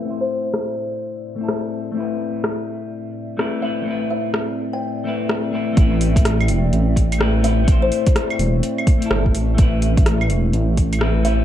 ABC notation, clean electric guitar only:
X:1
M:4/4
L:1/16
Q:"Swing 16ths" 1/4=126
K:Am
V:1 name="Clean electric guitar"
[A,CEc]8- [A,CEc]3 [A,CEA]4- [A,CEA] | [A,CEB]12 [A,CEB]2 [A,CEB]2 | [A,CEB]8- [A,CEB]2 [A,CEB]4 [A,CEB]2 | [A,CEB]12 [A,CEB]2 [A,CEB]2 |
[A,CEc]8- [A,CEc]3 [A,CEA]4- [A,CEA] | [A,CEB]12 [A,CEB]2 [A,CEB]2 |]